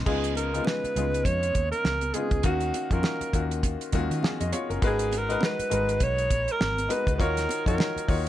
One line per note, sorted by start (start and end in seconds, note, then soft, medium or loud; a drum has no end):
0.06 0.59 C#2 medium
0.06 0.39 C#3 medium
0.06 0.39 G#3 medium
0.06 0.39 B3 medium
0.06 0.39 D#4 medium
0.06 0.39 F4 medium
0.06 0.34 G#4 medium
0.06 kick loud
0.06 crash medium
0.06 muted conga soft
0.24 closed hi-hat soft
0.35 0.67 A#4 medium
0.35 closed hi-hat medium
0.35 muted conga soft
0.53 0.85 C#3 medium
0.53 0.85 G#3 medium
0.53 0.85 B3 medium
0.53 0.86 D#4 medium
0.53 0.86 F4 medium
0.53 closed hi-hat soft
0.65 1.26 B4 medium
0.65 snare loud
0.65 high conga medium
0.84 muted fingered electric bass stroke soft
0.84 closed hi-hat soft
0.96 1.22 C#2 medium
0.96 1.82 C#3 medium
0.96 1.82 G#3 medium
0.96 1.83 B3 medium
0.96 1.83 D#4 medium
0.96 1.83 F4 medium
0.96 closed hi-hat medium
0.96 low conga medium
1.14 closed hi-hat soft
1.24 1.52 F2 medium
1.24 1.71 C#5 loud
1.24 kick medium
1.24 closed hi-hat medium
1.24 muted conga soft
1.43 closed hi-hat soft
1.55 1.71 D#2 medium
1.55 kick medium
1.55 closed hi-hat medium
1.55 muted conga soft
1.72 2.16 A#4 medium
1.72 closed hi-hat soft
1.84 2.11 C#2 medium
1.84 snare loud
1.84 high conga medium
2.01 closed hi-hat soft
2.01 high conga soft
2.14 2.37 C#3 medium
2.14 2.37 G#3 medium
2.14 2.38 B3 medium
2.14 2.38 D#4 medium
2.14 2.38 F4 medium
2.14 2.44 G#4 medium
2.14 closed hi-hat medium
2.14 high conga medium
2.31 2.43 C#2 medium
2.31 kick medium
2.31 closed hi-hat soft
2.43 2.71 D#2 medium
2.43 2.76 D#3 medium
2.43 2.77 A#3 medium
2.43 2.77 C#4 medium
2.43 2.77 F#4 medium
2.43 2.94 F#4 medium
2.43 2.77 F5 medium
2.43 kick loud
2.43 closed hi-hat medium
2.43 muted conga soft
2.61 closed hi-hat soft
2.74 closed hi-hat medium
2.74 muted conga soft
2.91 3.02 F2 medium
2.91 3.23 D#3 medium
2.91 3.23 A#3 medium
2.91 3.23 C#4 medium
2.91 3.24 F4 medium
2.91 3.24 F#4 medium
2.91 3.52 A#4 medium
2.91 kick medium
2.91 closed hi-hat soft
3.03 snare loud
3.03 high conga medium
3.21 muted fingered electric bass stroke soft
3.21 closed hi-hat medium
3.33 3.75 D#2 medium
3.33 3.78 D#3 medium
3.33 3.78 A#3 medium
3.33 3.79 C#4 medium
3.33 3.79 F4 medium
3.33 3.79 F#4 medium
3.33 kick medium
3.33 closed hi-hat medium
3.51 closed hi-hat soft
3.63 kick medium
3.63 closed hi-hat medium
3.63 muted conga soft
3.81 closed hi-hat soft
3.92 4.08 D#2 medium
3.92 4.58 D#3 medium
3.92 4.58 A#3 medium
3.92 4.23 C#4 medium
3.92 4.23 F4 medium
3.92 4.24 F#4 medium
3.92 kick medium
3.92 closed hi-hat medium
3.92 low conga medium
4.11 4.22 D#3 loud
4.11 closed hi-hat soft
4.23 4.40 G#4 medium
4.23 4.39 F5 medium
4.23 muted fingered electric bass stroke soft
4.23 snare loud
4.23 high conga medium
4.40 4.52 F2 medium
4.40 4.52 F#4 medium
4.40 4.52 D#5 medium
4.40 closed hi-hat soft
4.40 high conga soft
4.53 4.70 F4 medium
4.53 4.69 C#5 medium
4.53 closed hi-hat medium
4.53 high conga medium
4.69 4.81 F#1 medium
4.69 4.98 C#4 soft
4.69 4.82 A#4 medium
4.69 closed hi-hat soft
4.82 5.35 G#1 loud
4.82 5.14 G#3 medium
4.82 5.15 D#4 medium
4.82 5.15 F#4 medium
4.82 5.15 A#4 medium
4.82 5.15 B4 medium
4.82 kick medium
4.82 closed hi-hat medium
4.82 muted conga soft
4.87 5.20 G#4 medium
4.99 closed hi-hat medium
5.12 closed hi-hat medium
5.12 muted conga soft
5.18 5.45 A#4 medium
5.29 5.60 G#3 medium
5.29 5.61 D#4 medium
5.29 5.61 F#4 medium
5.29 5.61 A#4 medium
5.29 5.62 B4 medium
5.29 closed hi-hat soft
5.41 snare loud
5.41 high conga medium
5.45 6.05 B4 loud
5.59 muted fingered electric bass stroke soft
5.59 closed hi-hat soft
5.70 5.98 G#1 medium
5.70 6.56 G#3 medium
5.70 6.56 D#4 medium
5.70 6.56 F#4 medium
5.70 6.57 A#4 medium
5.70 6.57 B4 medium
5.70 closed hi-hat medium
5.70 low conga medium
5.89 closed hi-hat medium
6.00 6.27 B1 medium
6.00 6.53 C#5 loud
6.00 kick medium
6.00 closed hi-hat medium
6.00 muted conga soft
6.18 closed hi-hat soft
6.30 6.46 A#1 medium
6.30 kick medium
6.30 closed hi-hat medium
6.30 muted conga soft
6.48 6.95 A#4 loud
6.48 closed hi-hat soft
6.60 6.87 G#1 medium
6.60 snare loud
6.60 high conga medium
6.78 closed hi-hat soft
6.78 high conga soft
6.88 7.12 G#3 medium
6.88 7.12 D#4 medium
6.88 7.12 F#4 medium
6.88 7.12 A#4 medium
6.88 7.12 B4 medium
6.88 closed hi-hat medium
6.88 high conga medium
6.93 7.14 B4 medium
7.07 7.20 C#2 medium
7.07 kick medium
7.07 closed hi-hat soft
7.15 7.51 D#3 medium
7.15 7.22 B4 medium
7.19 7.46 D#2 medium
7.19 7.52 D#4 medium
7.19 7.52 F4 medium
7.19 7.52 F#4 medium
7.19 7.67 A#4 loud
7.19 7.52 C#5 medium
7.19 kick loud
7.19 closed hi-hat medium
7.19 muted conga soft
7.37 snare soft
7.37 closed hi-hat medium
7.49 closed hi-hat medium
7.49 muted conga soft
7.66 7.77 F2 medium
7.66 7.98 D#3 medium
7.66 7.98 D#4 medium
7.66 7.98 F4 medium
7.66 7.99 F#4 medium
7.66 8.22 A#4 medium
7.66 7.98 C#5 medium
7.66 kick medium
7.66 closed hi-hat soft
7.78 snare loud
7.78 high conga medium
7.96 muted fingered electric bass stroke soft
7.96 closed hi-hat soft
8.08 8.29 D#2 medium
8.08 8.29 D#3 medium
8.08 8.29 D#4 medium
8.08 8.29 F4 medium
8.08 8.29 F#4 medium
8.08 8.29 C#5 medium
8.08 kick medium
8.08 open hi-hat soft